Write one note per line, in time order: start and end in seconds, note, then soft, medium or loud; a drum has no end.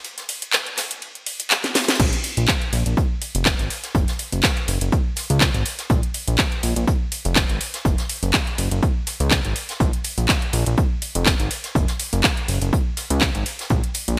0.04 closed hi-hat medium
0.04 ride medium
0.18 snare medium
0.18 closed hi-hat medium
0.28 closed hi-hat medium
0.28 open hi-hat loud
0.28 ride medium
0.42 closed hi-hat medium
0.42 closed hi-hat soft
0.53 snare loud
0.53 clap loud
0.53 closed hi-hat loud
0.53 ride medium
0.67 closed hi-hat soft
0.77 snare loud
0.77 clap soft
0.77 closed hi-hat medium
0.77 open hi-hat medium
0.77 ride medium
0.91 closed hi-hat medium
1.02 ride medium
1.15 closed hi-hat soft
1.26 open hi-hat loud
1.26 ride medium
1.40 closed hi-hat medium
1.50 snare loud
1.50 clap loud
1.50 closed hi-hat medium
1.50 ride medium
1.64 snare medium
1.64 closed hi-hat medium
1.74 snare medium
1.74 closed hi-hat medium
1.74 open hi-hat medium
1.74 ride medium
1.82 snare medium
1.82 closed hi-hat medium
1.88 snare medium
1.88 closed hi-hat medium
1.94 snare medium
1.94 closed hi-hat medium
2.00 2.11 A#1 loud
2.00 kick loud
2.00 closed hi-hat medium
2.00 crash loud
2.13 closed hi-hat medium
2.23 closed hi-hat medium
2.23 open hi-hat loud
2.23 ride medium
2.37 2.47 A#1 medium
2.37 closed hi-hat medium
2.37 closed hi-hat soft
2.48 kick loud
2.48 snare loud
2.48 clap loud
2.48 closed hi-hat medium
2.62 closed hi-hat soft
2.73 2.84 A#1 medium
2.73 closed hi-hat medium
2.73 open hi-hat medium
2.73 ride medium
2.86 2.95 A#1 medium
2.86 closed hi-hat medium
2.97 kick loud
2.97 closed hi-hat medium
3.22 closed hi-hat medium
3.22 open hi-hat loud
3.22 ride medium
3.35 3.55 F1 loud
3.35 closed hi-hat medium
3.35 closed hi-hat soft
3.46 kick loud
3.46 snare loud
3.46 clap loud
3.46 closed hi-hat medium
3.59 3.69 G#1 medium
3.59 closed hi-hat medium
3.59 closed hi-hat soft
3.70 closed hi-hat medium
3.70 open hi-hat medium
3.70 ride medium
3.83 snare soft
3.83 closed hi-hat medium
3.95 4.06 F#1 loud
3.95 kick loud
3.95 closed hi-hat loud
4.08 snare medium
4.08 closed hi-hat medium
4.19 closed hi-hat medium
4.19 open hi-hat loud
4.19 ride medium
4.32 4.42 F#1 medium
4.32 closed hi-hat medium
4.32 closed hi-hat soft
4.43 kick loud
4.43 snare loud
4.43 clap loud
4.43 closed hi-hat medium
4.57 closed hi-hat soft
4.68 4.79 F#1 medium
4.68 closed hi-hat medium
4.68 open hi-hat loud
4.68 ride medium
4.81 4.91 F#1 medium
4.81 closed hi-hat medium
4.92 kick loud
4.92 closed hi-hat medium
5.16 snare soft
5.16 closed hi-hat medium
5.16 open hi-hat loud
5.16 ride medium
5.30 5.50 C#2 medium
5.30 closed hi-hat medium
5.41 kick loud
5.41 snare loud
5.41 clap loud
5.41 closed hi-hat medium
5.54 5.64 G#1 medium
5.54 closed hi-hat medium
5.65 closed hi-hat medium
5.65 open hi-hat loud
5.65 ride medium
5.79 snare medium
5.79 closed hi-hat medium
5.90 6.01 A#1 loud
5.90 kick loud
5.90 closed hi-hat loud
6.03 closed hi-hat medium
6.14 closed hi-hat medium
6.14 open hi-hat loud
6.14 ride medium
6.28 6.37 A#1 medium
6.28 closed hi-hat medium
6.28 closed hi-hat soft
6.38 kick loud
6.38 snare loud
6.38 clap loud
6.38 closed hi-hat loud
6.52 closed hi-hat soft
6.63 6.74 A#1 medium
6.63 closed hi-hat medium
6.63 open hi-hat loud
6.63 ride medium
6.76 6.86 A#1 medium
6.76 closed hi-hat medium
6.87 kick loud
6.87 closed hi-hat medium
7.12 closed hi-hat medium
7.12 open hi-hat loud
7.12 ride medium
7.25 7.45 F1 loud
7.25 closed hi-hat soft
7.25 closed hi-hat medium
7.36 kick loud
7.36 snare loud
7.36 clap loud
7.36 closed hi-hat medium
7.49 7.59 G#1 medium
7.49 closed hi-hat medium
7.49 closed hi-hat soft
7.60 closed hi-hat medium
7.60 open hi-hat loud
7.60 ride medium
7.74 snare soft
7.74 closed hi-hat medium
7.85 7.96 F#1 loud
7.85 kick loud
7.85 closed hi-hat medium
7.98 snare medium
7.98 closed hi-hat medium
8.09 closed hi-hat medium
8.09 open hi-hat loud
8.09 ride medium
8.22 8.32 F#1 medium
8.22 closed hi-hat soft
8.22 closed hi-hat medium
8.33 kick loud
8.33 snare loud
8.33 clap loud
8.33 closed hi-hat medium
8.47 closed hi-hat soft
8.58 8.69 F#1 medium
8.58 closed hi-hat medium
8.58 open hi-hat loud
8.58 ride medium
8.71 8.81 F#1 medium
8.71 closed hi-hat medium
8.83 kick loud
8.83 closed hi-hat medium
9.07 snare soft
9.07 closed hi-hat medium
9.07 open hi-hat loud
9.07 ride medium
9.20 9.40 C#2 medium
9.20 closed hi-hat medium
9.31 kick loud
9.31 snare loud
9.31 clap loud
9.31 closed hi-hat medium
9.45 9.54 G#1 medium
9.45 closed hi-hat medium
9.56 closed hi-hat medium
9.56 open hi-hat loud
9.56 ride medium
9.69 snare medium
9.69 closed hi-hat medium
9.80 9.91 A#1 loud
9.80 kick loud
9.80 closed hi-hat medium
9.93 closed hi-hat soft
10.04 closed hi-hat medium
10.04 open hi-hat loud
10.04 ride medium
10.18 10.27 A#1 medium
10.18 closed hi-hat soft
10.18 closed hi-hat medium
10.28 kick loud
10.28 snare loud
10.28 clap loud
10.28 closed hi-hat loud
10.42 closed hi-hat soft
10.53 10.64 A#1 medium
10.53 closed hi-hat medium
10.53 open hi-hat medium
10.53 ride medium
10.66 10.76 A#1 medium
10.66 closed hi-hat medium
10.77 kick loud
10.77 closed hi-hat medium
11.02 closed hi-hat medium
11.02 open hi-hat loud
11.02 ride medium
11.15 11.36 F1 loud
11.15 closed hi-hat medium
11.15 closed hi-hat soft
11.26 kick loud
11.26 snare loud
11.26 clap loud
11.26 closed hi-hat medium
11.40 11.49 G#1 medium
11.40 closed hi-hat medium
11.40 closed hi-hat soft
11.51 closed hi-hat medium
11.51 open hi-hat loud
11.51 ride medium
11.64 snare medium
11.64 closed hi-hat medium
11.75 11.86 F#1 loud
11.75 kick loud
11.75 closed hi-hat medium
11.88 snare medium
11.88 closed hi-hat soft
12.00 closed hi-hat medium
12.00 open hi-hat loud
12.00 ride medium
12.13 12.22 F#1 medium
12.13 closed hi-hat medium
12.13 closed hi-hat soft
12.24 kick loud
12.24 snare loud
12.24 clap loud
12.24 closed hi-hat loud
12.37 closed hi-hat soft
12.48 12.60 F#1 medium
12.48 closed hi-hat medium
12.48 open hi-hat medium
12.48 ride medium
12.62 12.71 F#1 medium
12.62 closed hi-hat medium
12.73 kick loud
12.73 closed hi-hat medium
12.97 snare soft
12.97 closed hi-hat medium
12.97 open hi-hat loud
12.97 ride medium
13.10 13.31 C#2 medium
13.10 closed hi-hat medium
13.21 kick loud
13.21 snare loud
13.21 clap loud
13.21 closed hi-hat medium
13.35 13.44 G#1 medium
13.35 closed hi-hat medium
13.46 closed hi-hat medium
13.46 open hi-hat medium
13.46 ride medium
13.59 snare medium
13.59 closed hi-hat medium
13.70 13.82 A#1 loud
13.70 kick loud
13.70 closed hi-hat loud
13.84 closed hi-hat medium
13.94 closed hi-hat medium
13.94 open hi-hat loud
13.94 ride medium
14.08 14.17 A#1 medium
14.08 closed hi-hat medium
14.08 closed hi-hat soft